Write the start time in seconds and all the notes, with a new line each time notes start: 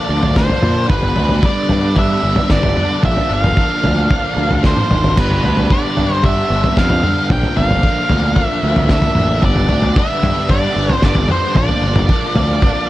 Already playing: D3 F3 D4 A#4 D5
0.09 D2 F3 A#3 D4
0.23 D2, floor tom
0.36 A#2 D3 F3 A#3 D4 C5, kick, snare
0.50 floor tom
0.62 A#2 F3 A#3 D4, mid tom
0.88 G1 G2 D3 G3 B3 D4 B4, kick, floor tom
1.03 floor tom
1.16 D2 G3 B3 D4, floor tom
1.29 floor tom
1.42 G2 D3 G3 B3 D4 D5, kick
1.69 G2 G3 B3 D4, floor tom
1.95 D3 G3 B3 D4 E5, kick, floor tom
2.22 G1 G3 B3 D4
2.36 floor tom
2.49 G1 G2 D3 G3 B3 D4 D5, kick, snare
2.63 floor tom
2.76 G3 B3 D4, mid tom
3.03 A#1 A#2 D3 F3 A#3 D4 A#4 D5 E5, kick, floor tom
3.17 floor tom
3.30 G1 F3 A#3 D4
3.34 F5
3.44 floor tom, mid tom
3.56 A#2 D3 F3 A#3 D4, kick
3.83 D2 F3 A#3 D4, floor tom
4.10 D3 F3 A#3 D4, kick, floor tom
4.36 D2 F3 A#3 D4
4.50 D2, floor tom
4.63 A#2 D3 F3 A#3 D4 C5, kick, snare
4.77 high tom
4.90 G#1 F3 A#3 D4, mid tom
5.04 floor tom
5.17 G1 G2 D3 G3 B3 D4 B4, kick, floor tom, crash
5.31 floor tom
5.43 D2 G3 B3 D4, floor tom
5.57 floor tom
5.70 G2 D3 G3 B3 D4 D5, kick
5.96 G2 G3 B3 D4, floor tom
6.15 C5
6.23 D3 G3 B3 D4 E5, kick, floor tom
6.49 G1 G3 B3 D4
6.64 floor tom
6.76 F2 G2 D3 G3 B3 D4 F5, kick, snare
6.90 floor tom
7.03 G3 B3 D4, mid tom
7.29 A#1 A#2 D3 F3 A#3 D4 A#4 G5, kick, floor tom
7.43 floor tom
7.56 G1 F3 A#3 D4 F5, floor tom
7.71 floor tom
7.83 A#2 D3 F3 A#3 D4, kick
8.09 D2 F3 A#3 D4, floor tom
8.35 D3 F3 A#3 D4, kick, floor tom
8.46 E5
8.63 D2 F3 A#3 D4
8.76 D2, floor tom
8.88 A#2 D3 F3 A#3 D4 E5, kick, snare
9.02 floor tom
9.15 A1 F3 A#3 D4, mid tom
9.42 G1 G2 D3 G3 B3 D4 B4 D5, kick, floor tom
9.56 floor tom
9.69 D2 G3 B3 D4, floor tom
9.82 floor tom
9.96 G2 D3 G3 B3 D4 E5, kick
10.22 G2 G3 B3 D4, floor tom
10.49 D3 G3 B3 D4 D5, kick, floor tom
10.76 G1 G3 B3 D4
10.90 C5, floor tom
11.01 G1 G2 D3 G3 B3 D4 D5, kick, snare
11.15 floor tom
11.29 G3 B3 D4 C5, mid tom
11.55 A#1 A#2 D3 F3 A#3 D4 A#4 D5, kick, floor tom
11.69 floor tom
11.82 G1 F3 A#3 D4
11.96 floor tom, mid tom
12.08 A#2 D3 F3 A#3 D4, kick
12.35 D2 F3 A#3 D4, floor tom
12.61 D3 F3 A#3 D4, kick, floor tom